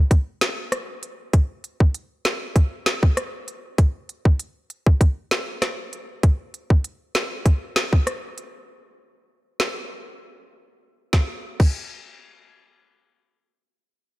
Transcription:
0.11 kick loud
0.11 closed hi-hat medium
0.41 snare loud
0.41 closed hi-hat medium
0.72 cross-stick loud
0.72 closed hi-hat medium
1.03 closed hi-hat medium
1.33 kick loud
1.33 closed hi-hat medium
1.64 closed hi-hat medium
1.80 kick loud
1.94 closed hi-hat medium
2.25 snare loud
2.25 closed hi-hat medium
2.56 kick loud
2.56 closed hi-hat medium
2.86 snare loud
2.86 closed hi-hat medium
3.03 kick loud
3.17 cross-stick loud
3.17 closed hi-hat medium
3.48 closed hi-hat medium
3.78 kick loud
3.78 closed hi-hat medium
4.09 closed hi-hat medium
4.25 kick loud
4.39 closed hi-hat medium
4.70 closed hi-hat soft
4.86 kick loud
5.01 kick loud
5.01 closed hi-hat medium
5.31 snare loud
5.31 closed hi-hat medium
5.62 cross-stick loud
5.62 snare medium
5.62 closed hi-hat medium
5.93 closed hi-hat medium
6.23 kick loud
6.23 closed hi-hat medium
6.54 closed hi-hat soft
6.70 kick medium
6.84 closed hi-hat medium
7.15 snare loud
7.15 closed hi-hat soft
7.46 kick medium
7.46 closed hi-hat medium
7.76 snare loud
7.76 closed hi-hat soft
7.93 kick medium
8.07 cross-stick medium
8.07 closed hi-hat medium
8.38 closed hi-hat medium
9.60 snare loud
11.13 kick loud
11.13 snare medium
11.60 kick loud
11.60 crash medium

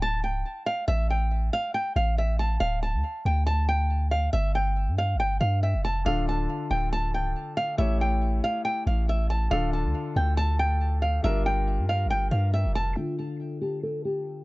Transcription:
0.00 0.25 D1 loud
0.00 0.21 A5 medium
0.23 0.44 C#1 loud
0.23 0.64 G5 medium
0.66 0.85 F5 medium
0.88 1.50 A1 loud
0.88 1.07 E5 loud
1.10 1.51 G5 medium
1.53 1.72 F5 medium
1.74 1.93 G5 medium
1.96 2.58 A1 loud
1.96 2.15 F5 medium
2.18 2.37 E5 medium
2.39 2.58 A5 medium
2.60 2.95 D1 loud
2.60 2.80 F5 loud
2.83 3.23 A5 medium
2.94 3.03 D2 loud
3.25 4.29 D2 loud
3.25 3.45 G5 medium
3.47 3.66 A5 loud
3.69 4.09 G5 medium
4.11 4.31 F5 medium
4.33 4.89 G1 loud
4.33 4.52 E5 loud
4.55 4.96 G5 medium
4.88 5.16 G2 loud
4.98 5.17 F5 medium
5.15 5.40 G1 loud
5.20 5.39 G5 medium
5.41 5.76 G2 loud
5.41 5.60 F5 medium
5.63 5.82 E5 medium
5.74 6.04 F1 loud
5.85 6.04 A5 medium
6.05 6.47 D1 loud
6.05 7.75 D3 medium
6.05 7.75 D4 medium
6.05 7.75 F4 medium
6.05 7.76 A4 medium
6.05 6.25 F5 loud
6.29 6.69 A5 medium
6.71 7.15 D1 loud
6.71 6.90 G5 medium
6.93 7.12 A5 medium
7.14 7.34 C#1 loud
7.14 7.55 G5 medium
7.57 7.76 F5 medium
7.77 8.41 A1 loud
7.77 9.47 A3 medium
7.77 9.48 E4 medium
7.77 9.48 G4 medium
7.77 9.49 C#5 medium
7.77 7.98 E5 loud
8.01 8.41 G5 medium
8.44 8.63 F5 loud
8.65 8.84 G5 medium
8.87 9.49 A1 loud
8.87 9.06 F5 medium
9.09 9.28 E5 medium
9.30 9.49 A5 medium
9.50 9.86 D1 loud
9.50 11.20 D3 medium
9.50 11.20 D4 medium
9.50 11.21 F4 medium
9.50 11.21 A4 medium
9.50 9.70 F5 loud
9.73 10.14 A5 medium
9.84 9.94 D2 loud
10.16 11.20 D2 loud
10.16 10.35 G5 medium
10.37 10.57 A5 loud
10.59 11.00 G5 medium
11.02 11.21 F5 medium
11.23 11.80 G1 loud
11.23 12.93 G3 medium
11.23 12.93 D4 medium
11.23 12.93 F4 medium
11.23 12.94 A#4 medium
11.23 11.43 E5 loud
11.46 11.86 G5 medium
11.79 12.07 G2 loud
11.89 12.08 F5 medium
12.05 12.31 G1 loud
12.10 12.29 G5 medium
12.31 12.66 G2 loud
12.31 12.51 F5 medium
12.54 12.73 E5 medium
12.65 12.95 F1 loud
12.75 12.94 A5 medium
12.95 14.44 D3 medium
12.95 14.44 D4 medium
12.95 13.16 F4 loud
12.95 14.44 F4 medium
12.95 14.44 A4 medium
13.19 13.59 A4 medium
13.61 13.80 G4 medium
13.83 14.02 A4 medium
14.05 14.44 G4 medium

